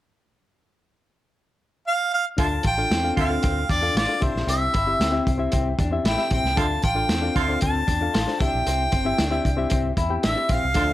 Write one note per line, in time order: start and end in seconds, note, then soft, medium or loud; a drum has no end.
1.87 2.11 F5 medium
2.14 2.25 F5 medium
2.37 2.58 D2 medium
2.37 2.47 D3 medium
2.37 2.46 A3 medium
2.37 2.63 D4 medium
2.37 2.54 D4 medium
2.37 2.46 F4 medium
2.37 2.63 F4 medium
2.37 2.63 A4 medium
2.37 2.64 F5 medium
2.37 2.63 A5 loud
2.37 kick loud
2.37 closed hi-hat medium
2.63 2.84 A1 medium
2.63 2.80 F4 medium
2.63 3.15 G5 loud
2.63 kick medium
2.63 closed hi-hat medium
2.78 2.95 D4 medium
2.78 2.95 F4 medium
2.78 2.95 A4 medium
2.78 2.95 F5 medium
2.90 3.10 E2 medium
2.90 3.40 C4 medium
2.90 snare medium
2.90 closed hi-hat medium
3.03 3.20 D4 medium
3.03 3.20 F4 medium
3.03 3.21 A4 medium
3.03 3.21 F5 medium
3.17 3.36 D2 medium
3.17 3.34 D3 medium
3.17 3.34 A3 medium
3.17 3.34 F4 medium
3.17 3.73 F5 medium
3.17 kick medium
3.17 closed hi-hat medium
3.29 3.63 D4 medium
3.29 3.64 F4 medium
3.29 3.64 A4 medium
3.29 3.64 F5 medium
3.43 3.63 D2 medium
3.43 3.58 C4 medium
3.43 kick medium
3.43 closed hi-hat medium
3.70 3.89 E2 medium
3.70 3.85 D4 medium
3.70 3.97 D5 medium
3.70 kick medium
3.70 closed hi-hat medium
3.81 3.99 D4 medium
3.81 3.99 F4 medium
3.81 3.99 A4 medium
3.81 4.00 F5 medium
3.95 4.05 A1 medium
3.95 4.11 F4 medium
3.95 4.24 D5 medium
3.95 snare medium
3.95 closed hi-hat medium
4.07 4.21 D4 medium
4.07 4.22 F4 medium
4.07 4.22 A4 medium
4.07 4.22 F5 medium
4.20 4.32 C2 medium
4.20 4.74 C4 medium
4.20 4.38 D4 medium
4.20 4.74 E4 medium
4.20 4.74 G4 medium
4.20 4.49 C5 medium
4.20 4.75 E5 medium
4.20 kick loud
4.20 closed hi-hat medium
4.34 4.44 A#1 medium
4.34 snare soft
4.47 4.67 C2 medium
4.47 4.63 C4 medium
4.47 5.24 E5 medium
4.47 closed hi-hat medium
4.74 4.93 G1 medium
4.74 4.89 E4 medium
4.74 kick medium
4.74 closed hi-hat medium
4.87 5.04 C4 medium
4.87 5.04 E4 medium
4.87 5.04 G4 medium
4.87 5.05 E5 medium
5.00 5.19 D2 medium
5.00 5.50 C4 medium
5.00 snare medium
5.00 closed hi-hat medium
5.11 5.29 C4 medium
5.11 5.30 E4 medium
5.11 5.30 G4 medium
5.11 5.30 E5 medium
5.27 5.46 C2 medium
5.27 kick medium
5.27 closed hi-hat medium
5.38 5.72 C4 medium
5.38 5.73 E4 medium
5.38 5.73 G4 medium
5.38 5.73 E5 medium
5.52 5.72 C2 medium
5.52 5.67 C4 medium
5.52 kick medium
5.52 closed hi-hat medium
5.78 5.98 E2 medium
5.78 5.95 D4 medium
5.78 kick medium
5.78 closed hi-hat medium
5.91 6.09 C4 medium
5.91 6.09 E4 medium
5.91 6.09 G4 medium
5.91 6.09 E5 medium
6.04 6.14 A1 medium
6.04 6.21 E4 medium
6.04 6.31 G5 medium
6.04 snare medium
6.04 closed hi-hat medium
6.17 6.43 C4 medium
6.17 6.43 E4 medium
6.17 6.43 G4 medium
6.17 6.44 E5 medium
6.17 snare soft
6.31 6.41 A#1 medium
6.31 6.47 C4 medium
6.31 6.59 G5 medium
6.31 kick medium
6.31 closed hi-hat medium
6.44 6.54 C2 medium
6.44 snare soft
6.56 6.77 D2 medium
6.56 6.67 D3 medium
6.56 6.66 A3 medium
6.56 6.82 D4 medium
6.56 6.73 D4 medium
6.56 6.82 F4 medium
6.56 6.66 F4 medium
6.56 6.82 A4 medium
6.56 6.83 F5 medium
6.56 6.83 A5 loud
6.56 kick loud
6.56 closed hi-hat medium
6.82 7.03 A1 medium
6.82 6.99 F4 medium
6.82 7.37 G5 medium
6.82 kick medium
6.82 closed hi-hat medium
6.95 7.13 D4 medium
6.95 7.13 F4 medium
6.95 7.13 A4 medium
6.95 7.13 F5 medium
7.09 7.28 E2 medium
7.09 7.59 C4 medium
7.09 snare medium
7.09 closed hi-hat medium
7.21 7.39 D4 medium
7.21 7.39 F4 medium
7.21 7.39 A4 medium
7.21 7.40 F5 medium
7.36 7.55 D2 medium
7.36 7.53 D3 medium
7.36 7.53 A3 medium
7.36 7.53 F4 medium
7.36 7.61 F5 medium
7.36 kick medium
7.36 closed hi-hat medium
7.48 7.82 D4 medium
7.48 7.82 F4 medium
7.48 7.83 A4 medium
7.48 7.83 C5 medium
7.61 7.81 D2 medium
7.61 7.77 C4 medium
7.61 8.41 A5 loud
7.61 kick medium
7.61 closed hi-hat medium
7.87 8.07 E2 medium
7.87 8.03 D4 medium
7.87 kick medium
7.87 closed hi-hat medium
8.01 8.18 D4 medium
8.01 8.18 F4 medium
8.01 8.19 A4 medium
8.01 8.19 F5 medium
8.14 8.24 A1 medium
8.14 8.29 F4 medium
8.14 snare medium
8.14 closed hi-hat medium
8.27 8.40 D4 medium
8.27 8.41 F4 medium
8.27 8.41 A4 medium
8.27 8.41 C5 medium
8.27 snare soft
8.40 8.50 C2 medium
8.40 8.93 C4 medium
8.40 8.56 D4 medium
8.40 8.93 E4 medium
8.40 8.93 G4 medium
8.40 8.94 E5 medium
8.40 9.97 G5 medium
8.40 kick loud
8.40 closed hi-hat medium
8.53 8.63 A#1 medium
8.66 8.86 C2 medium
8.66 8.82 C4 medium
8.66 closed hi-hat medium
8.92 9.12 G1 medium
8.92 9.07 C4 medium
8.92 kick medium
8.92 closed hi-hat medium
9.05 9.22 C4 medium
9.05 9.23 E4 medium
9.05 9.23 G4 medium
9.05 9.23 E5 medium
9.18 9.38 D2 medium
9.18 9.68 D4 medium
9.18 snare medium
9.18 closed hi-hat medium
9.31 9.48 C4 medium
9.31 9.48 E4 medium
9.31 9.49 G4 medium
9.31 9.49 E5 medium
9.45 9.64 C2 medium
9.45 kick medium
9.45 closed hi-hat medium
9.57 9.91 C4 medium
9.57 9.91 E4 medium
9.57 9.91 G4 medium
9.57 9.92 E5 medium
9.70 9.91 C2 medium
9.70 9.86 C4 medium
9.70 kick medium
9.70 closed hi-hat medium
9.97 10.16 E2 medium
9.97 10.12 E4 medium
9.97 kick medium
9.97 closed hi-hat medium
10.09 10.27 C4 medium
10.09 10.27 E4 medium
10.09 10.27 G4 medium
10.09 10.27 G5 medium
10.23 10.34 A1 medium
10.23 10.38 D4 medium
10.23 10.53 E5 medium
10.23 snare medium
10.23 closed hi-hat medium
10.35 10.61 C4 medium
10.35 10.62 E4 medium
10.35 10.62 G4 medium
10.35 10.62 E5 medium
10.49 10.59 A#1 medium
10.49 10.64 C4 medium
10.49 10.93 F5 loud
10.49 kick medium
10.49 closed hi-hat medium
10.63 10.73 C2 medium
10.74 10.93 D2 medium
10.74 10.84 D3 medium
10.74 10.93 F3 medium
10.74 10.84 A3 medium
10.74 10.93 A3 medium
10.74 10.93 D4 medium
10.74 10.91 D4 medium
10.74 10.93 F4 medium
10.74 10.84 F4 medium
10.74 10.93 A4 medium
10.74 10.93 F5 medium
10.74 kick loud
10.74 closed hi-hat medium